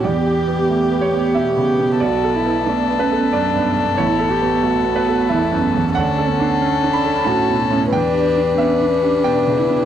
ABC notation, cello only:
X:1
M:3/4
L:1/8
Q:1/4=91
K:Edor
V:1 name="Cello"
G4 G2 | F E D C D2 | E G F2 E C | D B, C D F C |
D2 B, C D E |]